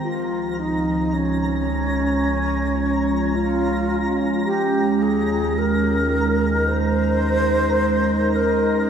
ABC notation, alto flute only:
X:1
M:4/4
L:1/16
Q:1/4=54
K:Dblyd
V:1 name="Alto flute"
F2 E2 D8 F3 z | G2 A2 B4 c6 B2 |]